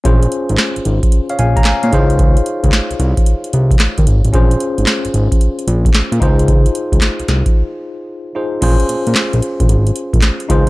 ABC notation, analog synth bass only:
X:1
M:4/4
L:1/16
Q:"Swing 16ths" 1/4=112
K:Bbm
V:1 name="Analog synth bass" clef=bass
B,,,2 z A,,, z A,,, A,,, z3 B,,,2 z B,, D,,2- | D,,2 z D,, z C,, C,, z3 C,,2 z E,, A,,, =A,,, | B,,,2 z A,,, z A,,, A,,, z3 B,,,2 z B,, D,,2- | D,,2 z D,, z C,, C,, z8 z |
B,,, z B,, B,, z B,,, z B,,, A,,,2 z B,,, z2 D,, z |]